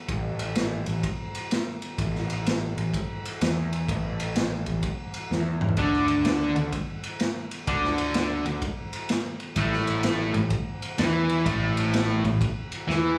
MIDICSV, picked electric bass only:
0, 0, Header, 1, 2, 480
1, 0, Start_track
1, 0, Tempo, 473934
1, 97, Time_signature, 4, 2, 24, 8
1, 13350, End_track
2, 0, Start_track
2, 0, Title_t, "Picked electric bass"
2, 0, Program_c, 0, 34
2, 90, Note_on_c, 0, 33, 84
2, 847, Note_off_c, 0, 33, 0
2, 887, Note_on_c, 0, 33, 74
2, 1044, Note_off_c, 0, 33, 0
2, 2009, Note_on_c, 0, 33, 85
2, 2767, Note_off_c, 0, 33, 0
2, 2808, Note_on_c, 0, 33, 69
2, 2964, Note_off_c, 0, 33, 0
2, 3460, Note_on_c, 0, 40, 84
2, 3905, Note_off_c, 0, 40, 0
2, 3934, Note_on_c, 0, 33, 90
2, 4689, Note_off_c, 0, 33, 0
2, 4728, Note_on_c, 0, 33, 73
2, 4885, Note_off_c, 0, 33, 0
2, 5379, Note_on_c, 0, 40, 73
2, 5824, Note_off_c, 0, 40, 0
2, 5847, Note_on_c, 0, 38, 96
2, 6604, Note_off_c, 0, 38, 0
2, 6650, Note_on_c, 0, 38, 67
2, 6805, Note_off_c, 0, 38, 0
2, 7772, Note_on_c, 0, 38, 98
2, 8526, Note_off_c, 0, 38, 0
2, 8572, Note_on_c, 0, 38, 78
2, 8725, Note_off_c, 0, 38, 0
2, 9684, Note_on_c, 0, 33, 89
2, 10442, Note_off_c, 0, 33, 0
2, 10481, Note_on_c, 0, 33, 68
2, 10639, Note_off_c, 0, 33, 0
2, 11130, Note_on_c, 0, 40, 85
2, 11578, Note_off_c, 0, 40, 0
2, 11604, Note_on_c, 0, 33, 91
2, 12361, Note_off_c, 0, 33, 0
2, 12400, Note_on_c, 0, 33, 73
2, 12558, Note_off_c, 0, 33, 0
2, 13051, Note_on_c, 0, 40, 87
2, 13350, Note_off_c, 0, 40, 0
2, 13350, End_track
0, 0, End_of_file